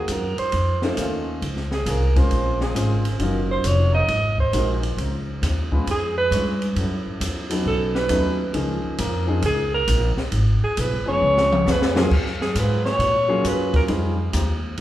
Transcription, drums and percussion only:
0.08 hi-hat pedal, ride
0.38 ride
0.52 ride
0.82 snare
0.97 hi-hat pedal, ride
1.42 ride
1.56 snare
1.71 snare
1.86 hi-hat pedal, ride
2.16 kick, ride
2.31 ride
2.61 snare
2.76 hi-hat pedal, ride
3.05 ride
3.19 ride
3.64 hi-hat pedal, ride
4.08 ride
4.38 kick
4.53 hi-hat pedal, ride
4.83 ride
4.98 ride
5.43 snare, hi-hat pedal, ride
5.72 kick
5.87 ride
6.32 hi-hat pedal, ride
6.62 ride
6.76 ride
7.21 hi-hat pedal, ride
7.50 ride
7.95 snare
8.09 hi-hat pedal, ride
8.54 ride
8.98 hi-hat pedal, ride
9.42 ride
9.87 hi-hat pedal, ride
10.17 snare
10.32 ride
10.77 hi-hat pedal, ride
11.37 snare
11.52 high tom
11.67 snare, hi-hat pedal
11.82 snare
11.96 snare
12.11 kick, crash
12.26 snare
12.41 snare
12.55 hi-hat pedal, ride
12.85 snare
13.00 ride
13.44 hi-hat pedal, ride
13.74 kick, ride
13.88 ride
14.33 hi-hat pedal, ride
14.77 ride

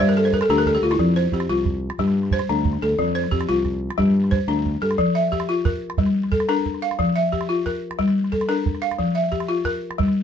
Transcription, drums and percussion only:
0.08 calabash click
0.25 calabash click
0.33 calabash thump
0.41 calabash click
0.66 calabash thump
0.75 calabash click
0.91 calabash click
0.99 calabash thump
1.32 calabash thump
1.40 calabash click
1.65 calabash thump
1.90 calabash click
1.99 calabash thump
2.07 calabash click
2.23 calabash click
2.31 calabash thump
2.39 calabash click
2.65 calabash thump
2.73 calabash click
2.98 calabash thump
3.24 calabash click
3.32 calabash thump
3.41 calabash click
3.65 calabash thump, calabash click
3.90 calabash click
4.00 calabash thump
4.24 calabash click
4.32 calabash thump
4.66 calabash thump
4.91 calabash click
4.98 calabash thump
5.33 calabash thump
5.40 calabash click
5.65 calabash thump
5.90 calabash click
5.98 calabash thump
6.06 calabash click
6.24 calabash click
6.32 calabash thump
6.40 calabash click
6.66 calabash thump
6.74 calabash click
6.91 calabash click
6.99 calabash thump
7.33 calabash thump
7.41 calabash click
7.66 calabash thump
7.91 calabash click
7.99 calabash thump
8.08 calabash click
8.24 calabash click
8.33 calabash thump
8.41 calabash click
8.66 calabash thump
8.75 calabash click
8.91 calabash click
8.99 calabash thump
9.32 calabash thump
9.40 calabash click
9.65 calabash thump
9.91 calabash click
10.00 calabash thump
10.08 calabash click

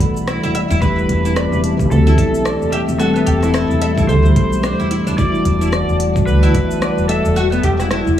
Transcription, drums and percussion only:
0.00 kick, closed hi-hat
0.17 cabasa
0.28 cross-stick, cabasa
0.44 cabasa
0.55 closed hi-hat
0.71 cabasa
0.82 kick, cabasa
0.98 cabasa
1.09 kick, closed hi-hat
1.26 cabasa
1.36 cross-stick, cabasa
1.53 cabasa
1.64 closed hi-hat
1.79 kick, cabasa
1.91 cabasa
2.07 cabasa
2.18 kick, closed hi-hat
2.35 cabasa
2.46 cross-stick, cabasa
2.62 cabasa
2.73 closed hi-hat
2.89 cabasa
3.00 cabasa
3.16 cabasa
3.27 kick, closed hi-hat
3.43 cross-stick, cabasa
3.54 cross-stick, cabasa
3.71 cabasa
3.82 closed hi-hat
3.98 kick, cabasa
4.09 cabasa
4.25 cabasa
4.36 kick, closed hi-hat
4.53 cabasa
4.64 cross-stick, cabasa
4.80 cabasa
4.91 closed hi-hat
5.07 cabasa
5.18 kick, cabasa
5.35 cabasa
5.45 kick, closed hi-hat
5.62 cabasa
5.73 cross-stick, cabasa
5.89 cabasa
6.00 closed hi-hat
6.16 kick, cabasa
6.28 cabasa
6.44 cabasa
6.54 kick, closed hi-hat
6.71 cabasa
6.82 cross-stick, cabasa
6.98 cabasa
7.09 closed hi-hat
7.25 cabasa
7.37 cabasa
7.53 cabasa
7.63 kick, closed hi-hat
7.80 cross-stick, cabasa
7.91 cross-stick, cabasa
8.07 cabasa

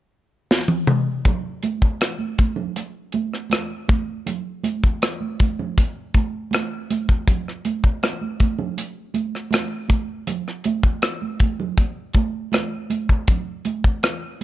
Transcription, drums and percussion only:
0.51 snare
0.68 high tom
0.87 mid tom
1.25 kick, closed hi-hat, muted conga, low conga
1.63 closed hi-hat, high conga
1.82 kick
2.01 cross-stick, closed hi-hat
2.18 high conga
2.38 kick, closed hi-hat, high conga
2.56 low conga
2.76 closed hi-hat, muted conga
3.12 closed hi-hat, muted conga, high conga
3.34 cross-stick
3.50 cross-stick, closed hi-hat, high conga
3.88 kick, closed hi-hat, muted conga, high conga
4.26 closed hi-hat, muted conga, low conga
4.63 closed hi-hat, muted conga, high conga
4.84 kick
5.02 cross-stick, closed hi-hat, muted conga
5.20 high conga
5.40 kick, closed hi-hat, high conga
5.59 low conga
5.78 kick, closed hi-hat, muted conga
6.14 kick, closed hi-hat, high conga
6.51 cross-stick, closed hi-hat, muted conga, high conga
6.90 closed hi-hat, muted conga, high conga
7.09 kick
7.28 kick, closed hi-hat, low conga
7.48 cross-stick
7.65 closed hi-hat, high conga
7.84 kick
8.03 cross-stick, closed hi-hat, muted conga
8.21 high conga
8.40 kick, closed hi-hat, muted conga, high conga
8.59 low conga
8.77 closed hi-hat, muted conga
9.14 closed hi-hat, high conga
9.35 cross-stick
9.51 cross-stick, closed hi-hat, muted conga, high conga
9.89 kick, closed hi-hat, high conga
10.27 closed hi-hat, muted conga, low conga
10.48 cross-stick
10.64 closed hi-hat, muted conga, high conga
10.83 kick
11.02 cross-stick, closed hi-hat, muted conga
11.22 high conga
11.40 kick, closed hi-hat, high conga
11.60 low conga
11.78 kick, closed hi-hat, muted conga
12.13 kick, closed hi-hat, muted conga, high conga
12.52 cross-stick, closed hi-hat, muted conga, high conga
12.90 closed hi-hat, muted conga, high conga
13.09 kick
13.28 kick, closed hi-hat, low conga
13.65 closed hi-hat, high conga
13.84 kick
14.03 cross-stick, closed hi-hat

